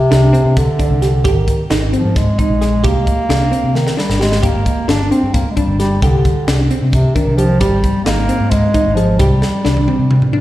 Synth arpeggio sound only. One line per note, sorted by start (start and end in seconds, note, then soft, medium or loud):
0.11 0.28 D4 medium
0.33 0.68 C4 medium
0.79 0.96 D4 medium
1.02 1.19 G4 medium
1.24 1.59 G4 medium
1.70 1.88 D#4 medium
1.93 2.28 C4 medium
2.38 2.56 D#4 medium
2.61 2.79 G#4 medium
2.84 3.18 G4 loud
3.29 3.47 D4 medium
3.52 3.86 C4 medium
3.97 4.15 D4 medium
4.20 4.37 G4 medium
4.42 4.77 G4 medium
4.88 5.05 D4 medium
5.11 5.46 C4 medium
5.57 5.74 D4 medium
5.80 5.97 G4 medium
6.02 6.37 G4 medium
6.48 6.65 D4 medium
6.71 7.05 C4 medium
7.15 7.33 D4 medium
7.38 7.55 G4 medium
7.61 7.95 G4 medium
8.06 8.23 D#4 medium
8.29 8.63 C4 medium
8.74 8.92 D#4 medium
8.97 9.14 G#4 medium
9.19 9.54 G4 medium
9.65 9.82 D4 medium
9.88 10.22 C4 medium
10.33 10.41 D4 medium